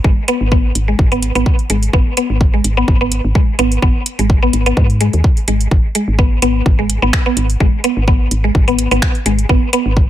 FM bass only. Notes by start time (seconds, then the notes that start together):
0.04 G#1
0.41 G#1
0.75 G#1
0.99 G#1
1.35 G#1
1.70 G#1
1.93 G#1
2.30 G#1
2.64 G#1
2.88 G#1
3.25 G#1
3.59 G#1
3.82 G#1
4.19 G#1
4.53 G#1
4.77 G#2
5.14 D#2
5.48 G#1
5.71 G#1
6.08 G#1
6.42 G#1
6.66 G#1
7.02 G#1
7.37 G#1
7.60 G#1
7.97 G#1
8.31 G#1
8.55 G#1
8.91 G#1
9.26 G#1
9.49 G#1
9.86 G#1